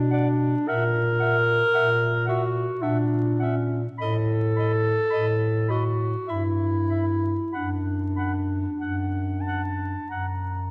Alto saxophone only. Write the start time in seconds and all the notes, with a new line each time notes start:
0.12 D5
0.68 E5
1.21 E5
1.75 E5
2.28 E5
2.82 E5
3.40 E5
4.01 D#5
4.57 D#5
5.11 D#5
5.68 D#5
6.28 E5
6.90 E5
7.54 F#5
8.17 F#5
8.80 F#5
9.46 F#5
10.11 F#5